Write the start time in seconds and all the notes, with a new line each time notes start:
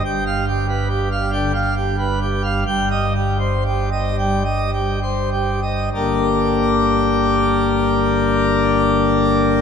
0.05 G1 G2 G5
0.26 F5
0.48 G4
0.69 B4
0.90 G4
1.11 F5
1.32 D3 G5
1.54 F5
1.76 G4
1.99 B4
2.21 G4
2.43 F5
2.67 G1 G2 G5
2.91 D#5
3.15 G4
3.40 C5
3.66 G4
3.92 D#5
4.18 G3 G5
4.45 D#5
4.73 G4
5.03 C5
5.32 G4
5.63 D#5
5.94 G1 G2 D3 A#3 D4 G4 A#4